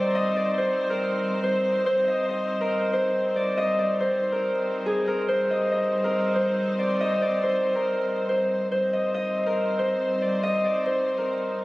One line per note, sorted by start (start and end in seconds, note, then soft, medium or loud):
0.00 1.82 G3 medium
0.00 5.25 C4 medium
0.00 5.25 D#4 medium
0.00 0.27 G#4 medium
0.00 0.89 A#4 medium
0.00 0.57 C5 medium
0.00 5.25 C5 medium
0.00 0.21 D5 medium
0.15 0.42 D#5 loud
0.36 2.14 D5 medium
0.58 1.43 C5 medium
0.89 2.60 A#4 medium
1.43 1.86 C5 medium
1.86 8.68 G3 medium
1.86 2.93 C5 loud
2.08 2.28 D#5 loud
2.29 3.42 D#5 medium
2.61 4.32 A#4 medium
2.93 4.00 C5 medium
3.36 3.63 D5 medium
3.57 3.85 D#5 loud
3.79 5.56 D5 medium
4.00 5.28 C5 medium
4.32 5.07 A#4 medium
4.86 7.13 G#4 medium
5.07 6.04 A#4 medium
5.28 8.68 C4 medium
5.28 8.68 D#4 medium
5.28 6.35 C5 loud
5.28 8.68 C5 medium
5.50 5.71 D#5 medium
5.72 6.85 D#5 medium
6.04 7.75 A#4 medium
6.35 7.43 C5 medium
6.79 7.07 D5 medium
7.00 7.28 D#5 loud
7.22 8.99 D5 medium
7.43 8.29 C5 medium
7.75 9.46 A#4 medium
8.29 8.71 C5 medium
8.71 11.64 G3 medium
8.71 11.64 C4 medium
8.71 11.64 D#4 medium
8.71 11.64 C5 medium
8.71 9.79 C5 loud
8.93 9.14 D#5 medium
9.14 10.28 D#5 medium
9.46 11.17 A#4 medium
9.79 10.86 C5 medium
10.22 10.49 D5 medium
10.43 10.70 D#5 loud
10.64 11.64 D5 medium
10.86 11.64 C5 medium
11.18 11.64 A#4 medium